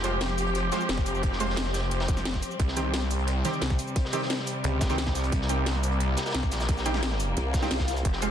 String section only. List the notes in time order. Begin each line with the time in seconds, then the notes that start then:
Already playing: F3 C4 G4
2.60 C3 G3
5.32 A#3
8.05 F3 C4 G4